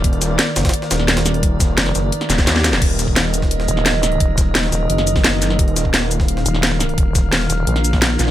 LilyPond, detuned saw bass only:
\new Staff \with { instrumentName = "Detuned saw bass" } { \clef bass \time 4/4 \key ees \minor \tempo 4 = 173 ees,,4 r8 ges,,8 r8 ees,,4.~ | ees,,4 r8 ges,,8 r2 | ees,,2~ ees,,8 r4. | r2 ges,,2 |
ees,,2~ ees,,8 r4. | r2. r8 bes,,8 | }